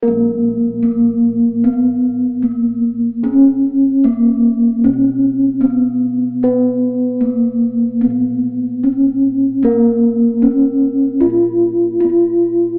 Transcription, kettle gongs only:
0.03 2.39 A#4 medium
0.08 4.82 A#1 medium
0.84 0.92 B3 soft
2.43 2.51 B3 soft
3.23 5.59 C#4 medium
4.05 4.13 B3 soft
4.84 7.20 B2 medium
5.66 5.74 B3 soft
6.44 8.80 B4 medium
7.24 7.32 B3 soft
8.05 10.40 A#2 medium
8.84 8.92 B3 soft
9.65 12.00 A#4 medium
10.43 10.51 B3 soft
11.26 12.78 A#2 medium
12.04 12.12 B3 soft

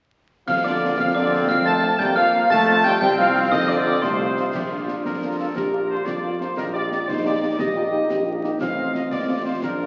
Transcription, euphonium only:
0.48 0.63 F3 medium
0.65 0.99 D3 medium
0.98 1.14 F3 loud
1.15 1.50 D3 medium
1.49 1.67 F3 loud
1.65 1.98 A3 loud
1.99 2.18 G3 loud
2.17 2.52 F3 loud
2.50 2.86 A3 loud
2.85 3.01 G3 loud
3.01 3.17 G3 loud
3.19 3.50 F3 loud
3.51 3.59 D#3 loud
3.69 4.01 D3 loud
4.02 4.50 C3 loud
4.54 5.51 D4 medium
5.55 6.07 G4 medium
6.05 7.07 F4 medium
7.08 7.55 D#4 medium
7.58 7.74 G4 medium
7.75 7.83 F4 medium
7.91 8.08 D#4 medium
8.09 8.25 G4 medium
8.25 8.44 F4 medium
8.43 8.60 D#4 medium
8.60 9.58 C4 medium
9.62 9.86 D4 medium

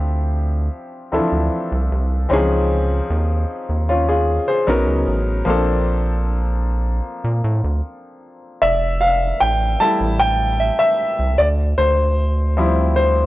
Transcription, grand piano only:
0.00 1.07 F3 medium
0.00 1.08 C4 medium
0.00 1.08 D4 medium
0.00 1.09 E4 medium
0.00 1.10 G4 medium
1.12 1.18 E3 soft
1.12 2.28 C4 soft
1.12 2.31 D4 soft
1.12 2.31 E4 soft
1.12 2.31 A4 medium
1.18 2.34 F3 medium
2.29 2.36 E3 medium
2.29 3.46 C4 medium
2.29 3.47 C#4 medium
2.29 3.47 D#4 medium
2.33 4.66 F3 medium
2.33 3.48 G#4 medium
3.89 4.08 C#4 medium
3.89 4.07 F4 medium
4.09 4.46 F4 medium
4.09 4.46 G#4 medium
4.48 4.86 G#4 medium
4.48 4.85 C5 medium
4.67 5.46 F#3 medium
4.67 5.46 B3 medium
4.67 5.47 C#4 medium
4.67 5.47 D#4 medium
4.67 5.47 A#4 medium
5.45 8.57 F3 medium
5.45 8.58 A#3 medium
5.45 8.59 C4 medium
5.45 8.59 D4 medium
5.50 8.60 A4 medium
8.62 9.03 E5 medium
9.01 9.42 F5 medium
9.40 9.81 G5 loud
9.80 10.95 G3 medium
9.80 10.95 A3 soft
9.80 10.96 E4 medium
9.80 10.21 A5 loud
10.19 10.81 G5 loud
10.79 11.34 E5 medium
11.38 11.47 D5 medium
11.78 12.95 C5 medium
12.57 13.26 F3 medium
12.57 13.26 G3 soft
12.57 13.26 C4 medium
12.57 13.26 E4 medium
12.96 13.05 C5 medium

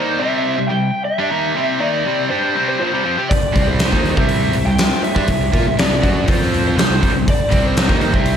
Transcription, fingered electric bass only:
3.56 3.90 C2 medium
3.92 4.15 D#2 medium
4.17 4.52 C2 medium
4.54 4.66 C2 medium
4.67 4.90 C2 medium
5.16 5.28 G2 medium
5.28 5.40 C2 medium
5.41 5.53 C2 medium
5.54 5.66 A#2 medium
5.67 5.78 C2 medium
5.79 5.90 C2 medium
5.90 6.02 C2 medium
6.03 6.27 F#2 medium
6.28 6.75 F2 medium
6.77 6.89 C2 medium
6.89 7.01 C2 medium
7.03 7.14 C2 medium
7.15 7.27 C2 medium
7.53 7.87 C2 loud
7.89 8.12 D#2 medium
8.14 8.37 C2 medium

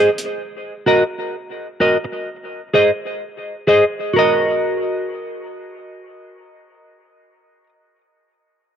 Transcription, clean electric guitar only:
0.86 1.02 F#4 medium
0.86 1.03 A#4 medium
0.86 1.03 D#5 medium
1.80 1.96 F#4 medium
1.80 1.96 A#4 medium
1.80 1.97 D#5 medium
2.04 muted clean electric guitar stroke soft
2.74 2.90 G#4 medium
2.74 2.90 C5 medium
2.74 2.90 D#5 medium
3.67 3.83 G#4 medium
3.67 3.84 C5 medium
3.67 3.84 D#5 medium
4.13 7.63 F#4 medium
4.13 7.66 A#4 medium
4.19 7.69 D#5 medium

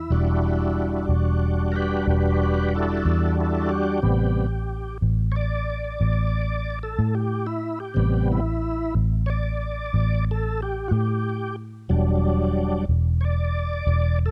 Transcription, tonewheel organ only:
0.00 1.06 E4 medium
0.11 4.00 G3 soft
0.11 4.00 D4 medium
0.11 4.00 F#4 medium
1.72 2.06 G4 medium
1.72 1.75 A#4 medium
1.76 2.07 B4 medium
2.10 2.39 G4 medium
2.10 2.41 B4 medium
2.42 2.71 G4 medium
2.42 2.73 B4 medium
2.75 3.04 E4 medium
2.75 3.05 A4 medium
3.05 3.36 E4 medium
3.05 3.37 A4 medium
3.40 3.70 E4 medium
3.40 3.71 A4 medium
3.70 4.98 G4 medium
4.02 4.46 C3 soft
4.02 4.47 G3 soft
4.02 4.47 B3 medium
5.32 5.35 C#5 medium
5.36 6.79 D5 loud
6.83 7.14 A4 medium
7.15 7.47 G4 medium
7.46 7.79 E4 medium
7.80 8.28 G4 medium
7.94 8.39 C3 medium
7.94 8.40 G3 soft
7.94 8.41 B3 medium
8.32 8.94 E4 medium
9.26 9.30 C#5 medium
9.26 10.25 D5 medium
10.31 10.61 A4 medium
10.62 10.91 G4 medium
10.88 10.92 F#4 medium
10.92 11.56 G4 medium
11.89 12.85 F#3 medium
11.89 12.85 G3 medium
11.89 12.85 D4 medium
13.21 13.24 C#5 medium
13.21 14.19 D5 medium
14.26 14.31 A4 medium

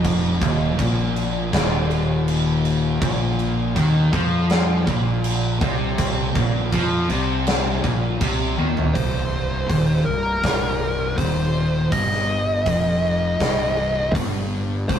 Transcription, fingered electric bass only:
0.00 0.38 F1 loud
0.42 0.76 D#1 loud
0.79 1.49 A#1 loud
1.53 2.98 D#1 loud
3.01 3.72 A#1 loud
3.76 4.10 D#2 loud
4.13 4.83 F2 loud
4.87 5.57 A#1 medium
5.61 6.31 C2 loud
6.36 6.70 A#1 medium
6.72 7.07 F2 loud
7.10 7.80 C2 loud
7.84 8.18 A#1 loud
8.21 8.55 C2 medium
8.58 8.93 D#2 loud
8.95 9.65 C1 medium
9.70 10.04 D#1 medium
10.07 10.41 C1 medium
10.44 11.14 C1 loud
11.18 11.88 D#1 loud
11.92 12.62 G1 medium
12.67 13.37 F1 medium
13.40 14.11 C1 loud
14.15 14.85 G1 loud
14.89 14.99 G#1 medium

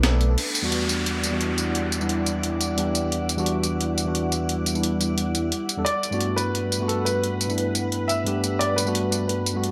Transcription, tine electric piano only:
0.03 0.36 A3 medium
0.03 0.37 B3 medium
0.03 0.37 D4 medium
0.03 0.37 A4 medium
0.62 1.29 E2 medium
0.62 1.30 G3 medium
0.62 1.30 B3 medium
0.62 1.31 D4 medium
0.62 1.31 F#4 medium
1.31 1.98 E2 medium
1.31 1.98 G3 medium
1.31 1.99 B3 medium
1.31 1.99 D4 medium
1.31 2.00 F#4 medium
1.99 2.75 E2 medium
1.99 2.75 G3 medium
1.99 2.76 B3 medium
1.99 2.76 D4 medium
1.99 2.76 E4 medium
2.76 3.35 E2 medium
2.76 3.36 G3 medium
2.76 3.36 B3 medium
2.76 3.36 D4 medium
2.76 3.37 G4 medium
3.37 4.04 E2 medium
3.37 4.04 G3 medium
3.37 4.04 B3 medium
3.37 4.05 D4 medium
3.37 4.05 F#4 loud
4.05 4.72 E2 medium
4.05 4.73 G3 medium
4.05 4.73 B3 medium
4.05 4.73 D4 medium
4.05 4.74 F#4 medium
4.74 5.49 E2 medium
4.74 5.50 G3 medium
4.74 5.50 B3 medium
4.74 5.50 D4 medium
4.74 5.51 E4 medium
5.77 5.82 E2 medium
5.77 5.82 G3 medium
5.77 5.82 B3 medium
5.77 5.82 D4 medium
5.77 5.83 A4 medium
6.11 6.78 G2 medium
6.11 6.78 A3 medium
6.11 6.79 B3 medium
6.11 6.79 D4 medium
6.11 6.79 F#4 loud
6.79 7.47 G2 medium
6.79 7.47 A3 medium
6.79 7.47 B3 medium
6.79 7.48 D4 medium
6.79 7.48 F#4 medium
7.48 8.24 G2 medium
7.48 8.24 A3 medium
7.48 8.24 B3 medium
7.48 8.25 D4 medium
7.48 8.25 E4 medium
8.25 8.84 G2 medium
8.25 8.84 A3 medium
8.25 8.85 B3 medium
8.25 8.85 D4 medium
8.25 8.85 G4 medium
8.85 9.52 G2 medium
8.85 9.53 A3 medium
8.85 9.53 B3 medium
8.85 9.53 D4 medium
8.85 9.54 F#4 loud
9.54 9.71 G2 medium
9.54 9.71 A3 medium
9.54 9.71 B3 medium
9.54 9.71 D4 medium
9.54 9.71 F#4 medium

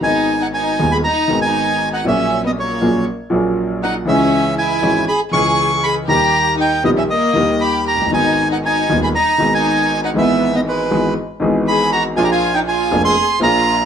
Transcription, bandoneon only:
0.03 0.42 G#5 medium
0.42 0.47 F#5 medium
0.54 0.93 G#5 medium
0.92 0.97 B5 medium
1.04 1.40 A#5 medium
1.42 1.89 G#5 medium
1.94 2.05 F#5 medium
2.08 2.42 E5 medium
2.46 2.51 D#5 medium
2.60 3.05 C#5 medium
3.83 3.94 F#5 medium
4.08 4.55 E5 medium
4.58 5.05 G#5 medium
5.09 5.20 B5 medium
5.33 5.85 C#6 medium
5.84 5.95 B5 medium
6.09 6.56 A#5 medium
6.61 6.84 G5 medium
6.85 6.91 D#5 medium
6.98 7.03 E5 medium
7.10 7.63 D#5 medium
7.61 7.85 B5 medium
7.88 8.11 A#5 medium
8.14 8.48 G#5 medium
8.52 8.58 F#5 medium
8.66 9.00 G#5 medium
9.04 9.09 B5 medium
9.15 9.54 A#5 medium
9.55 10.00 G#5 medium
10.05 10.10 F#5 medium
10.18 10.55 E5 medium
10.56 10.61 D#5 medium
10.68 11.14 B4 medium
11.68 11.91 B5 medium
11.93 12.04 A#5 medium
12.17 12.24 G#5 medium
12.24 12.31 A#5 medium
12.32 12.55 G#5 medium
12.54 12.60 G5 medium
12.68 13.02 G#5 medium
13.05 13.39 C6 loud
13.43 13.85 A#5 medium

